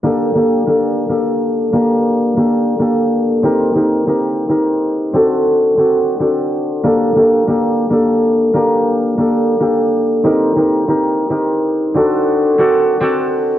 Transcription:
\new Staff \with { instrumentName = "Harp" } { \time 4/4 \key g \minor \tempo 4 = 141 <bes d' g' a'>8 r16 <bes d' g' a'>8 r16 <bes d' g' a'>8. r16 <bes d' g' a'>4~ <bes d' g' a'>16 r16 | <bes d' g' bes'>4~ <bes d' g' bes'>16 r16 <bes d' g' a'>8. r16 <bes d' g' a'>4~ <bes d' g' a'>16 r16 | <c' ees' g' bes'>8 r16 <c' ees' g' bes'>8 r16 <c' ees' g' bes'>8. r16 <c' ees' g' bes'>4~ <c' ees' g' bes'>16 r16 | <c' d' fis' a'>4~ <c' d' fis' a'>16 r16 <c' d' fis' a'>8. r16 <c' d' fis' a'>4~ <c' d' fis' a'>16 r16 |
<bes d' g' a'>8 r16 <bes d' g' a'>8 r16 <bes d' g' a'>8. r16 <bes d' g' a'>4~ <bes d' g' a'>16 r16 | <bes d' g' bes'>4~ <bes d' g' bes'>16 r16 <bes d' g' a'>8. r16 <bes d' g' a'>4~ <bes d' g' a'>16 r16 | <c' ees' g' bes'>8 r16 <c' ees' g' bes'>8 r16 <c' ees' g' bes'>8. r16 <c' ees' g' bes'>4~ <c' ees' g' bes'>16 r16 | <c' d' fis' a'>4~ <c' d' fis' a'>16 r16 <c' d' fis' a'>8. r16 <c' d' fis' a'>4~ <c' d' fis' a'>16 r16 | }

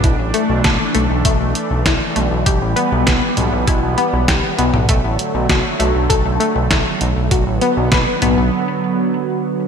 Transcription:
<<
  \new Staff \with { instrumentName = "Synth arpeggio sound" } { \time 4/4 \key d \major \tempo 4 = 99 e'8 a16 r16 a'8 a8 a16 r8. e'8 a16 r16 | g'8 b8 b16 r8. e'8 b16 r16 g'8 b8 | a16 r8. fis'8 a16 r16 a'8 a8 a16 r8. | fis'8 b16 r16 b'8 b8 r2 | }
  \new Staff \with { instrumentName = "Analog synth pad" } { \clef bass \time 4/4 \key d \major << { <a d'>1 | <g b>1 | <fis a>1 | <fis b>1 | } \\ { e1~ | e1 | d1 | d1 | } >> }
  \new Staff \with { instrumentName = "Analog synth bass" } { \clef bass \time 4/4 \key d \major b,,16 a,,16 r16 b,,16 b,,16 r16 b,,16 b,,16 b,,16 b,,16 r16 b,,16 b,,16 r16 b,,16 b,,16 | b,,16 a,,16 r16 b,,16 b,,16 r16 b,,16 b,,16 b,,16 b,,16 r16 b,,16 b,,16 r16 b,,16 b,,16 | b,,16 a,,16 r16 b,,16 b,,16 r16 b,,16 b,,16 b,,16 b,,16 r16 b,,16 b,,16 r16 b,,16 b,,16 | b,,16 a,,16 r16 b,,16 b,,16 r16 b,,16 b,,16 r2 | }
  \new DrumStaff \with { instrumentName = "Drums" } \drummode { \time 4/4 <hh bd>8 hh8 <hh bd sn>8 hh8 <hh bd>8 hh8 <hh bd sn>8 hh8 | <hh bd>8 hh8 <hh bd sn>8 <hh toml>8 <hh bd>8 hh8 <hh bd sn>8 hh16 toml16 | <hh bd>8 hh8 <hh bd sn>8 hh8 <hh bd>8 hh8 <hh bd sn>8 hh8 | <hh bd>8 hh8 <hh bd sn>8 <hh toml>8 r4 r4 | }
>>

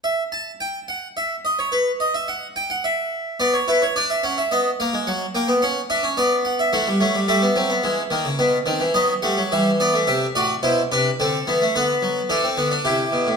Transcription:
<<
  \new Staff \with { instrumentName = "Harpsichord" } { \time 3/4 \key e \minor \tempo 4 = 108 e''8 a''8 g''8 fis''8 e''8 dis''16 cis''16 | b'8 dis''16 e''16 fis''8 g''16 fis''16 e''4 | d''16 cis''16 b'16 cis''16 d''16 e''16 fis''16 e''16 dis''8 eis''8 | fis''8 g''8 fis''8 e''8 d''8 fis''16 e''16 |
fis''4 e''2~ | e''4 dis''8 fis''8 e''8 d''8 | e''8 d''8 c''8 b'8 a'4 | b'4 a'4 g'4 | }
  \new Staff \with { instrumentName = "Harpsichord" } { \time 3/4 \key e \minor << { r2. | r2. | b8 e'8 d'8 cis'8 b8 ais16 gis16 | fis8 ais16 b16 cis'8 d'16 cis'16 b4 |
a16 g16 fis16 g16 a16 b16 c'16 b16 gis8 ais8 | b8 c'8 b8 a8 g8 b16 a16 | c'8 fis'8 e'8 d'8 c'8 b16 a16 | b4 d'16 c'16 b16 d'16 e'4 | } \\ { r2. | r2. | r2. | r2. |
e8 a8 g8 fis8 e8 dis16 cis16 | b,8 dis16 e16 fis8 g16 fis16 e4 | c8 a,8 b,8 c8 d8 e8 | d8 fis8 e8 d8 c8 b,16 a,16 | } >> }
>>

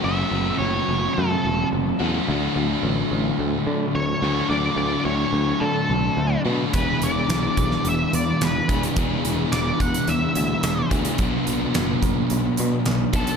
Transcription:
<<
  \new Staff \with { instrumentName = "Lead electric guitar" } { \time 4/4 \key d \lydian \tempo 4 = 108 e''4 cis''4 a'4 r4 | r2. cis''4 | d''4 cis''4 a'4. r8 | b'8 d''4. e''8 d''8 b'8. r16 |
r4 d''8 fis''8 e''4. r8 | r2. r8 a'8 | }
  \new Staff \with { instrumentName = "Overdriven electric guitar" } { \time 4/4 \key d \lydian <fis a cis' fis'>2.~ <fis a cis' fis'>8 <fis a cis' fis'>8 | <d fis a d' fis'>2.~ <d fis a d' fis'>8 <d fis a d' fis'>8 | <d fis a d' fis'>2.~ <d fis a d' fis'>8 <d fis a d' fis'>8 | <e b d' gis'>2.~ <e b d' gis'>8 <e b d' gis'>8 |
<e b d' gis'>2.~ <e b d' gis'>8 <e b d' gis'>8 | <b, fis b d' fis'>2.~ <b, fis b d' fis'>8 <b, fis b d' fis'>8 | }
  \new Staff \with { instrumentName = "Overdriven electric guitar" } { \time 4/4 \key d \lydian <fis, cis fis a cis' fis'>2.~ <fis, cis fis a cis' fis'>8 <fis, cis fis a cis' fis'>8 | <d a d' fis'>2.~ <d a d' fis'>8 <d a d' fis'>8 | <d a d' fis'>2.~ <d a d' fis'>8 <d a d' fis'>8 | <e, b, e gis d' e'>2.~ <e, b, e gis d' e'>8 <e, b, e gis d' e'>8 |
<e, b, e gis d' e'>2.~ <e, b, e gis d' e'>8 <e, b, e gis d' e'>8 | <b, fis b d' fis'>2.~ <b, fis b d' fis'>8 <b, fis b d' fis'>8 | }
  \new Staff \with { instrumentName = "Picked electric bass" } { \clef bass \time 4/4 \key d \lydian fis,,8 fis,,8 fis,,8 fis,,8 fis,8 e,,8 fis,,8 e,8 | d,8 d,8 a,,8 a,,8 d,8 d8 d,8 d,8 | d,8 d,8 d,8 d,8 d8 b,,8 d,8 b,8 | e,,8 e,,8 b,,8 b,,8 e,,8 e,8 e,,8 e,,8 |
e,,8 e,,8 e,,8 e,,8 e,8 d,8 e,,8 d,8 | b,,8 b,,8 fis,,8 fis,,8 b,,8 b,8 b,,8 b,,8 | }
  \new DrumStaff \with { instrumentName = "Drums" } \drummode { \time 4/4 r4 r4 r4 r4 | r4 r4 r4 r4 | r4 r4 r4 r4 | <hh bd>8 hh8 <hh sn>8 <hh bd>16 sn16 hh8 hh8 <hh sn>8 <hh bd>16 hh16 |
<hh bd>8 hh8 <hh sn>8 <hh bd>16 hh16 hh8 hh8 <hh sn>8 <hh bd>16 hh16 | <hh bd>8 hh8 <hh sn>8 <hh bd>8 hh8 hh8 <hh sn>8 <hh bd>16 hh16 | }
>>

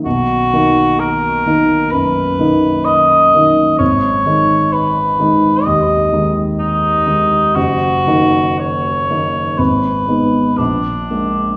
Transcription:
<<
  \new Staff \with { instrumentName = "Cor anglais" } { \time 4/4 \key aes \dorian \tempo 4 = 63 fis'4 ais'4 b'4 dis''4 | des''4 ces''4 ees''8 r8 ees'4 | ges'4 des''4 ces''4 d'4 | }
  \new Staff \with { instrumentName = "Grand piano" } { \clef bass \time 4/4 \key aes \dorian b,,8 <dis ais dis'>4 <dis ais dis'>8 fis,8 <dis ais dis'>4 <dis ais dis'>8 | aes,,8 <ees aes ees'>4 <ees aes ees'>8 ees,8 <ees aes ees'>4 <ees aes ees'>8 | ges,,8 <ees bes ees'>4 <ees bes ees'>8 aes,,8 <aes ces' ees'>8 bes,,8 <aes bes>8 | }
>>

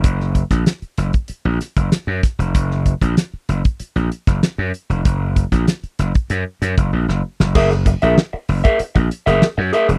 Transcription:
<<
  \new Staff \with { instrumentName = "Clean electric guitar" } { \time 4/4 \key fis \mixolydian \tempo 4 = 96 r1 | r1 | r1 | <gis' ais' e''>16 r8 <gis' ais' e''>16 r8. <gis' ais' e''>16 r8. <gis' ais' e''>16 r8 <gis' ais' e''>16 r16 | }
  \new Staff \with { instrumentName = "Slap bass" } { \clef bass \time 4/4 \key fis \mixolydian fis,,8. ais,,16 r8 fis,,16 r8 ais,,16 r16 fis,,16 r16 fis,16 r16 eis,,16 | fis,,8. ais,,16 r8 fis,,16 r8 ais,,16 r16 fis,,16 r16 fis,16 r16 eis,,16 | fis,,8. ais,,16 r8 fis,,16 r16 fis,16 r16 fis,16 fis,,16 ais,,16 fis,,16 r16 fis,,16 | fis,,8. ais,,16 r8 fis,,16 r8 ais,,16 r16 fis,,16 r16 fis,16 r16 eis,,16 | }
  \new DrumStaff \with { instrumentName = "Drums" } \drummode { \time 4/4 <hh bd>16 sn16 <hh bd>16 <hh bd sn>16 <hh sn>16 hh16 <hh sn>16 <hh bd>16 hh8 <hh sn>16 <hh bd>16 <hh sn>8 <hh bd sn>16 hh16 | <hh bd>16 sn16 <hh bd>16 <hh bd>16 <hh sn>8 hh16 <hh bd>16 hh16 hh16 hh16 <hh bd sn>16 <hh sn>8 hh16 hh16 | <hh bd>8 <hh bd>16 <hh bd sn>16 <hh sn>16 hh16 <hh sn>16 <hh bd>16 hh8 <hh sn>16 <hh bd>16 r16 sn8 sn16 | <cymc bd>16 <hh sn>16 <hh bd>16 hh16 sn8 hho16 <hh bd>16 hh16 <hh bd>16 hh16 <hh sn>16 sn8 hh16 hh16 | }
>>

